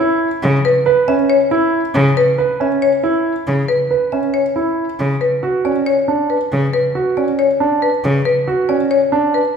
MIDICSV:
0, 0, Header, 1, 4, 480
1, 0, Start_track
1, 0, Tempo, 434783
1, 713, Time_signature, 7, 3, 24, 8
1, 10562, End_track
2, 0, Start_track
2, 0, Title_t, "Marimba"
2, 0, Program_c, 0, 12
2, 717, Note_on_c, 0, 71, 88
2, 1026, Note_off_c, 0, 71, 0
2, 1192, Note_on_c, 0, 76, 70
2, 1430, Note_on_c, 0, 73, 84
2, 1505, Note_off_c, 0, 76, 0
2, 1744, Note_off_c, 0, 73, 0
2, 2396, Note_on_c, 0, 71, 86
2, 2706, Note_off_c, 0, 71, 0
2, 2881, Note_on_c, 0, 76, 54
2, 3116, Note_on_c, 0, 73, 73
2, 3188, Note_off_c, 0, 76, 0
2, 3426, Note_off_c, 0, 73, 0
2, 4068, Note_on_c, 0, 71, 72
2, 4383, Note_off_c, 0, 71, 0
2, 4551, Note_on_c, 0, 76, 51
2, 4789, Note_on_c, 0, 73, 68
2, 4864, Note_off_c, 0, 76, 0
2, 5104, Note_off_c, 0, 73, 0
2, 5751, Note_on_c, 0, 71, 66
2, 6064, Note_off_c, 0, 71, 0
2, 6238, Note_on_c, 0, 74, 50
2, 6474, Note_on_c, 0, 73, 74
2, 6547, Note_off_c, 0, 74, 0
2, 6785, Note_off_c, 0, 73, 0
2, 6954, Note_on_c, 0, 71, 55
2, 7265, Note_off_c, 0, 71, 0
2, 7435, Note_on_c, 0, 71, 68
2, 7746, Note_off_c, 0, 71, 0
2, 7916, Note_on_c, 0, 74, 54
2, 8157, Note_on_c, 0, 73, 75
2, 8226, Note_off_c, 0, 74, 0
2, 8466, Note_off_c, 0, 73, 0
2, 8636, Note_on_c, 0, 71, 57
2, 8946, Note_off_c, 0, 71, 0
2, 9112, Note_on_c, 0, 71, 77
2, 9425, Note_off_c, 0, 71, 0
2, 9593, Note_on_c, 0, 74, 58
2, 9835, Note_on_c, 0, 73, 79
2, 9905, Note_off_c, 0, 74, 0
2, 10146, Note_off_c, 0, 73, 0
2, 10315, Note_on_c, 0, 71, 60
2, 10562, Note_off_c, 0, 71, 0
2, 10562, End_track
3, 0, Start_track
3, 0, Title_t, "Grand piano"
3, 0, Program_c, 1, 0
3, 0, Note_on_c, 1, 64, 76
3, 304, Note_off_c, 1, 64, 0
3, 949, Note_on_c, 1, 71, 74
3, 1191, Note_on_c, 1, 61, 63
3, 1264, Note_off_c, 1, 71, 0
3, 1504, Note_off_c, 1, 61, 0
3, 1669, Note_on_c, 1, 64, 79
3, 1984, Note_off_c, 1, 64, 0
3, 2631, Note_on_c, 1, 71, 68
3, 2872, Note_on_c, 1, 61, 62
3, 2944, Note_off_c, 1, 71, 0
3, 3185, Note_off_c, 1, 61, 0
3, 3350, Note_on_c, 1, 64, 69
3, 3664, Note_off_c, 1, 64, 0
3, 4313, Note_on_c, 1, 71, 57
3, 4555, Note_on_c, 1, 61, 53
3, 4625, Note_off_c, 1, 71, 0
3, 4866, Note_off_c, 1, 61, 0
3, 5032, Note_on_c, 1, 64, 64
3, 5344, Note_off_c, 1, 64, 0
3, 5994, Note_on_c, 1, 66, 65
3, 6235, Note_on_c, 1, 61, 51
3, 6305, Note_off_c, 1, 66, 0
3, 6546, Note_off_c, 1, 61, 0
3, 6713, Note_on_c, 1, 62, 60
3, 7025, Note_off_c, 1, 62, 0
3, 7675, Note_on_c, 1, 66, 64
3, 7917, Note_on_c, 1, 61, 48
3, 7986, Note_off_c, 1, 66, 0
3, 8226, Note_off_c, 1, 61, 0
3, 8394, Note_on_c, 1, 62, 69
3, 8705, Note_off_c, 1, 62, 0
3, 9357, Note_on_c, 1, 66, 68
3, 9593, Note_on_c, 1, 61, 56
3, 9666, Note_off_c, 1, 66, 0
3, 9905, Note_off_c, 1, 61, 0
3, 10070, Note_on_c, 1, 62, 74
3, 10384, Note_off_c, 1, 62, 0
3, 10562, End_track
4, 0, Start_track
4, 0, Title_t, "Cello"
4, 0, Program_c, 2, 42
4, 473, Note_on_c, 2, 49, 78
4, 653, Note_off_c, 2, 49, 0
4, 2149, Note_on_c, 2, 49, 84
4, 2330, Note_off_c, 2, 49, 0
4, 3837, Note_on_c, 2, 49, 67
4, 4015, Note_off_c, 2, 49, 0
4, 5514, Note_on_c, 2, 49, 59
4, 5694, Note_off_c, 2, 49, 0
4, 7201, Note_on_c, 2, 49, 68
4, 7378, Note_off_c, 2, 49, 0
4, 8879, Note_on_c, 2, 49, 69
4, 9057, Note_off_c, 2, 49, 0
4, 10562, End_track
0, 0, End_of_file